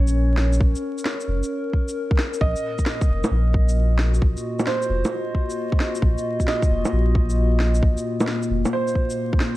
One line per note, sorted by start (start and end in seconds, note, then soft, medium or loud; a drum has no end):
0.00 0.59 A#1 medium
0.00 3.99 C#4 medium
0.00 3.76 A#4 medium
0.00 2.43 C#5 medium
0.00 3.46 C#5 medium
0.08 shaker medium
0.37 snare loud
0.53 shaker medium
0.60 0.74 A#1 medium
0.60 kick loud
0.76 shaker soft
0.98 shaker soft
1.05 snare loud
1.21 shaker soft
1.28 1.42 F1 medium
1.43 shaker medium
1.73 kick medium
1.89 shaker soft
2.11 kick loud
2.19 snare loud
2.34 shaker soft
2.41 2.55 A#1 loud
2.41 9.57 A#2 medium
2.41 3.50 D#5 medium
2.41 kick loud
2.56 shaker soft
2.61 9.57 A#3 medium
2.79 kick medium
2.79 shaker soft
2.86 snare loud
3.01 kick loud
3.01 shaker soft
3.09 3.23 F1 medium
3.24 low bongo soft
3.24 shaker medium
3.29 4.20 A#1 medium
3.29 9.57 F4 medium
3.54 kick loud
3.69 9.57 F#4 medium
3.69 shaker medium
3.97 9.57 D#5 medium
3.97 snare loud
4.14 shaker soft
4.22 4.36 A#1 medium
4.22 kick loud
4.37 shaker soft
4.59 low bongo medium
4.59 shaker soft
4.67 5.76 C5 medium
4.67 snare loud
4.82 shaker soft
4.89 5.03 F1 medium
5.05 low bongo soft
5.05 shaker medium
5.35 kick medium
5.50 shaker soft
5.72 kick loud
5.80 snare medium
5.95 shaker soft
6.02 6.16 A#1 medium
6.02 kick loud
6.18 shaker soft
6.40 kick medium
6.40 shaker soft
6.48 7.56 D#5 medium
6.48 snare loud
6.62 kick loud
6.62 shaker soft
6.70 6.84 F1 medium
6.85 low bongo medium
6.85 shaker soft
6.93 7.82 A#1 medium
7.15 kick medium
7.30 shaker medium
7.60 snare medium
7.75 shaker soft
7.83 7.96 A#1 medium
7.83 kick loud
7.98 shaker soft
8.20 low bongo medium
8.20 shaker soft
8.27 snare medium
8.43 shaker soft
8.50 8.64 F1 medium
8.65 low bongo medium
8.65 shaker medium
8.73 9.57 C5 medium
8.88 shaker soft
8.95 kick medium
9.10 shaker medium
9.33 kick loud
9.40 snare loud